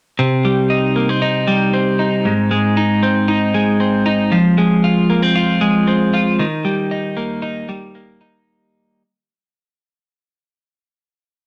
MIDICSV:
0, 0, Header, 1, 2, 480
1, 0, Start_track
1, 0, Key_signature, -3, "major"
1, 0, Tempo, 517688
1, 178, Time_signature, 4, 2, 24, 8
1, 10634, End_track
2, 0, Start_track
2, 0, Title_t, "Clean electric guitar"
2, 0, Program_c, 0, 27
2, 176, Note_on_c, 0, 48, 74
2, 415, Note_on_c, 0, 55, 58
2, 649, Note_on_c, 0, 63, 58
2, 889, Note_on_c, 0, 58, 50
2, 1012, Note_off_c, 0, 58, 0
2, 1012, Note_on_c, 0, 60, 39
2, 1126, Note_off_c, 0, 63, 0
2, 1130, Note_on_c, 0, 63, 63
2, 1356, Note_off_c, 0, 55, 0
2, 1367, Note_on_c, 0, 55, 62
2, 1598, Note_off_c, 0, 60, 0
2, 1609, Note_on_c, 0, 60, 54
2, 1843, Note_off_c, 0, 63, 0
2, 1847, Note_on_c, 0, 63, 53
2, 2085, Note_off_c, 0, 48, 0
2, 2088, Note_on_c, 0, 44, 75
2, 2133, Note_off_c, 0, 55, 0
2, 2328, Note_on_c, 0, 56, 55
2, 2565, Note_off_c, 0, 63, 0
2, 2569, Note_on_c, 0, 63, 64
2, 2803, Note_off_c, 0, 60, 0
2, 2807, Note_on_c, 0, 60, 54
2, 3033, Note_off_c, 0, 63, 0
2, 3044, Note_on_c, 0, 63, 64
2, 3283, Note_off_c, 0, 56, 0
2, 3287, Note_on_c, 0, 56, 63
2, 3521, Note_off_c, 0, 60, 0
2, 3525, Note_on_c, 0, 60, 55
2, 3751, Note_off_c, 0, 63, 0
2, 3763, Note_on_c, 0, 63, 63
2, 4001, Note_off_c, 0, 44, 0
2, 4004, Note_on_c, 0, 53, 77
2, 4049, Note_off_c, 0, 63, 0
2, 4242, Note_off_c, 0, 56, 0
2, 4246, Note_on_c, 0, 56, 58
2, 4487, Note_on_c, 0, 65, 59
2, 4723, Note_off_c, 0, 60, 0
2, 4726, Note_on_c, 0, 58, 55
2, 4844, Note_off_c, 0, 58, 0
2, 4844, Note_on_c, 0, 60, 43
2, 4954, Note_off_c, 0, 65, 0
2, 4965, Note_on_c, 0, 65, 64
2, 5191, Note_off_c, 0, 56, 0
2, 5202, Note_on_c, 0, 56, 60
2, 5436, Note_off_c, 0, 60, 0
2, 5447, Note_on_c, 0, 60, 49
2, 5677, Note_off_c, 0, 65, 0
2, 5688, Note_on_c, 0, 65, 58
2, 5924, Note_off_c, 0, 53, 0
2, 5929, Note_on_c, 0, 51, 71
2, 5971, Note_off_c, 0, 56, 0
2, 5973, Note_off_c, 0, 60, 0
2, 5973, Note_off_c, 0, 65, 0
2, 6163, Note_on_c, 0, 55, 59
2, 6410, Note_on_c, 0, 63, 60
2, 6645, Note_on_c, 0, 58, 51
2, 6879, Note_off_c, 0, 63, 0
2, 6883, Note_on_c, 0, 63, 61
2, 7123, Note_off_c, 0, 55, 0
2, 7127, Note_on_c, 0, 55, 63
2, 7368, Note_off_c, 0, 58, 0
2, 7372, Note_on_c, 0, 58, 52
2, 7608, Note_off_c, 0, 63, 0
2, 7612, Note_on_c, 0, 63, 59
2, 8363, Note_off_c, 0, 51, 0
2, 8363, Note_off_c, 0, 55, 0
2, 8363, Note_off_c, 0, 58, 0
2, 8363, Note_off_c, 0, 63, 0
2, 10634, End_track
0, 0, End_of_file